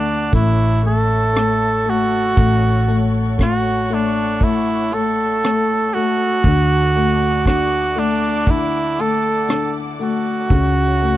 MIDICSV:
0, 0, Header, 1, 6, 480
1, 0, Start_track
1, 0, Key_signature, 3, "minor"
1, 0, Tempo, 1016949
1, 1118, Time_signature, 4, 2, 24, 8
1, 5273, End_track
2, 0, Start_track
2, 0, Title_t, "String section"
2, 0, Program_c, 0, 48
2, 0, Note_on_c, 0, 69, 59
2, 0, Note_on_c, 0, 74, 59
2, 0, Note_on_c, 0, 78, 57
2, 0, Note_on_c, 0, 86, 69
2, 145, Note_off_c, 0, 78, 0
2, 146, Note_off_c, 0, 74, 0
2, 146, Note_off_c, 0, 86, 0
2, 158, Note_on_c, 0, 85, 73
2, 160, Note_on_c, 0, 73, 61
2, 160, Note_on_c, 0, 76, 62
2, 1111, Note_off_c, 0, 76, 0
2, 1125, Note_on_c, 0, 78, 61
2, 3022, Note_off_c, 0, 85, 0
2, 3023, Note_off_c, 0, 73, 0
2, 3024, Note_off_c, 0, 78, 0
2, 3040, Note_on_c, 0, 78, 61
2, 3041, Note_on_c, 0, 74, 60
2, 3044, Note_on_c, 0, 86, 74
2, 4939, Note_off_c, 0, 78, 0
2, 4940, Note_off_c, 0, 74, 0
2, 4941, Note_off_c, 0, 86, 0
2, 4959, Note_on_c, 0, 73, 57
2, 4959, Note_on_c, 0, 76, 62
2, 4961, Note_on_c, 0, 85, 69
2, 5273, Note_off_c, 0, 69, 0
2, 5273, Note_off_c, 0, 73, 0
2, 5273, Note_off_c, 0, 76, 0
2, 5273, Note_off_c, 0, 85, 0
2, 5273, End_track
3, 0, Start_track
3, 0, Title_t, "Cor anglais"
3, 0, Program_c, 1, 69
3, 0, Note_on_c, 1, 62, 81
3, 160, Note_off_c, 1, 62, 0
3, 163, Note_on_c, 1, 64, 90
3, 383, Note_off_c, 1, 64, 0
3, 409, Note_on_c, 1, 69, 104
3, 895, Note_on_c, 1, 66, 97
3, 902, Note_off_c, 1, 69, 0
3, 1480, Note_off_c, 1, 66, 0
3, 1617, Note_on_c, 1, 66, 91
3, 1858, Note_on_c, 1, 62, 78
3, 1865, Note_off_c, 1, 66, 0
3, 2090, Note_on_c, 1, 64, 88
3, 2097, Note_off_c, 1, 62, 0
3, 2329, Note_on_c, 1, 69, 99
3, 2336, Note_off_c, 1, 64, 0
3, 2800, Note_on_c, 1, 66, 104
3, 2808, Note_off_c, 1, 69, 0
3, 3519, Note_off_c, 1, 66, 0
3, 3524, Note_on_c, 1, 66, 100
3, 3770, Note_on_c, 1, 62, 85
3, 3777, Note_off_c, 1, 66, 0
3, 4012, Note_on_c, 1, 64, 91
3, 4019, Note_off_c, 1, 62, 0
3, 4251, Note_on_c, 1, 69, 103
3, 4258, Note_off_c, 1, 64, 0
3, 4597, Note_off_c, 1, 69, 0
3, 4729, Note_on_c, 1, 66, 101
3, 5273, Note_off_c, 1, 66, 0
3, 5273, End_track
4, 0, Start_track
4, 0, Title_t, "Grand piano"
4, 0, Program_c, 2, 0
4, 0, Control_c, 2, 64, 127
4, 0, Note_on_c, 2, 50, 49
4, 0, Note_on_c, 2, 57, 50
4, 140, Note_off_c, 2, 50, 0
4, 146, Note_off_c, 2, 57, 0
4, 153, Note_on_c, 2, 57, 65
4, 161, Control_c, 2, 64, 0
4, 237, Control_c, 2, 64, 127
4, 385, Note_off_c, 2, 57, 0
4, 392, Note_on_c, 2, 57, 44
4, 621, Note_off_c, 2, 57, 0
4, 628, Note_on_c, 2, 57, 49
4, 869, Note_off_c, 2, 57, 0
4, 877, Note_on_c, 2, 57, 52
4, 1108, Note_off_c, 2, 57, 0
4, 1115, Note_on_c, 2, 57, 62
4, 1123, Control_c, 2, 64, 0
4, 1198, Control_c, 2, 64, 127
4, 1352, Note_off_c, 2, 57, 0
4, 1359, Note_on_c, 2, 57, 50
4, 1588, Note_off_c, 2, 57, 0
4, 1595, Note_on_c, 2, 57, 52
4, 1835, Note_off_c, 2, 57, 0
4, 1842, Note_on_c, 2, 57, 53
4, 2073, Note_off_c, 2, 57, 0
4, 2080, Note_on_c, 2, 57, 58
4, 2315, Note_off_c, 2, 57, 0
4, 2322, Note_on_c, 2, 57, 46
4, 2560, Note_off_c, 2, 57, 0
4, 2567, Note_on_c, 2, 57, 51
4, 2801, Note_off_c, 2, 57, 0
4, 2808, Note_on_c, 2, 57, 50
4, 3037, Note_off_c, 2, 57, 0
4, 3042, Note_on_c, 2, 50, 67
4, 3046, Control_c, 2, 64, 0
4, 3142, Control_c, 2, 64, 127
4, 3284, Note_on_c, 2, 57, 49
4, 3513, Note_off_c, 2, 50, 0
4, 3520, Note_on_c, 2, 50, 49
4, 3749, Note_off_c, 2, 57, 0
4, 3756, Note_on_c, 2, 57, 59
4, 3989, Note_off_c, 2, 50, 0
4, 3996, Note_on_c, 2, 50, 57
4, 4234, Note_off_c, 2, 57, 0
4, 4241, Note_on_c, 2, 57, 44
4, 4470, Note_off_c, 2, 50, 0
4, 4477, Note_on_c, 2, 50, 47
4, 4710, Note_off_c, 2, 57, 0
4, 4717, Note_on_c, 2, 57, 50
4, 4943, Note_off_c, 2, 50, 0
4, 4950, Note_off_c, 2, 57, 0
4, 4960, Note_on_c, 2, 49, 67
4, 4963, Control_c, 2, 64, 0
4, 5042, Control_c, 2, 64, 127
4, 5202, Note_on_c, 2, 57, 46
4, 5273, Note_off_c, 2, 49, 0
4, 5273, Note_off_c, 2, 57, 0
4, 5273, End_track
5, 0, Start_track
5, 0, Title_t, "Fingered electric bass"
5, 0, Program_c, 3, 33
5, 0, Note_on_c, 3, 38, 65
5, 136, Note_off_c, 3, 38, 0
5, 156, Note_on_c, 3, 33, 73
5, 1100, Note_off_c, 3, 33, 0
5, 1121, Note_on_c, 3, 33, 70
5, 3022, Note_off_c, 3, 33, 0
5, 3040, Note_on_c, 3, 38, 68
5, 4939, Note_off_c, 3, 38, 0
5, 4958, Note_on_c, 3, 37, 69
5, 5273, Note_off_c, 3, 37, 0
5, 5273, End_track
6, 0, Start_track
6, 0, Title_t, "Drums"
6, 155, Note_on_c, 9, 36, 66
6, 155, Note_on_c, 9, 42, 60
6, 202, Note_off_c, 9, 36, 0
6, 202, Note_off_c, 9, 42, 0
6, 397, Note_on_c, 9, 42, 47
6, 444, Note_off_c, 9, 42, 0
6, 638, Note_on_c, 9, 42, 64
6, 645, Note_on_c, 9, 37, 92
6, 685, Note_off_c, 9, 42, 0
6, 692, Note_off_c, 9, 37, 0
6, 882, Note_on_c, 9, 42, 48
6, 929, Note_off_c, 9, 42, 0
6, 1120, Note_on_c, 9, 36, 90
6, 1120, Note_on_c, 9, 42, 66
6, 1167, Note_off_c, 9, 36, 0
6, 1167, Note_off_c, 9, 42, 0
6, 1362, Note_on_c, 9, 42, 50
6, 1409, Note_off_c, 9, 42, 0
6, 1601, Note_on_c, 9, 36, 59
6, 1601, Note_on_c, 9, 42, 58
6, 1608, Note_on_c, 9, 37, 79
6, 1648, Note_off_c, 9, 36, 0
6, 1649, Note_off_c, 9, 42, 0
6, 1656, Note_off_c, 9, 37, 0
6, 1842, Note_on_c, 9, 42, 49
6, 1889, Note_off_c, 9, 42, 0
6, 2081, Note_on_c, 9, 36, 64
6, 2082, Note_on_c, 9, 42, 65
6, 2128, Note_off_c, 9, 36, 0
6, 2129, Note_off_c, 9, 42, 0
6, 2323, Note_on_c, 9, 42, 49
6, 2370, Note_off_c, 9, 42, 0
6, 2564, Note_on_c, 9, 42, 73
6, 2571, Note_on_c, 9, 37, 93
6, 2611, Note_off_c, 9, 42, 0
6, 2618, Note_off_c, 9, 37, 0
6, 2803, Note_on_c, 9, 42, 44
6, 2850, Note_off_c, 9, 42, 0
6, 3040, Note_on_c, 9, 36, 76
6, 3041, Note_on_c, 9, 42, 58
6, 3088, Note_off_c, 9, 36, 0
6, 3088, Note_off_c, 9, 42, 0
6, 3281, Note_on_c, 9, 42, 49
6, 3328, Note_off_c, 9, 42, 0
6, 3519, Note_on_c, 9, 36, 55
6, 3520, Note_on_c, 9, 42, 56
6, 3528, Note_on_c, 9, 37, 83
6, 3567, Note_off_c, 9, 36, 0
6, 3568, Note_off_c, 9, 42, 0
6, 3575, Note_off_c, 9, 37, 0
6, 3758, Note_on_c, 9, 42, 42
6, 3805, Note_off_c, 9, 42, 0
6, 3998, Note_on_c, 9, 36, 68
6, 3998, Note_on_c, 9, 42, 62
6, 4045, Note_off_c, 9, 36, 0
6, 4045, Note_off_c, 9, 42, 0
6, 4240, Note_on_c, 9, 42, 44
6, 4287, Note_off_c, 9, 42, 0
6, 4477, Note_on_c, 9, 42, 66
6, 4484, Note_on_c, 9, 37, 88
6, 4524, Note_off_c, 9, 42, 0
6, 4532, Note_off_c, 9, 37, 0
6, 4721, Note_on_c, 9, 42, 48
6, 4768, Note_off_c, 9, 42, 0
6, 4957, Note_on_c, 9, 36, 75
6, 4957, Note_on_c, 9, 42, 65
6, 5004, Note_off_c, 9, 36, 0
6, 5004, Note_off_c, 9, 42, 0
6, 5200, Note_on_c, 9, 42, 46
6, 5247, Note_off_c, 9, 42, 0
6, 5273, End_track
0, 0, End_of_file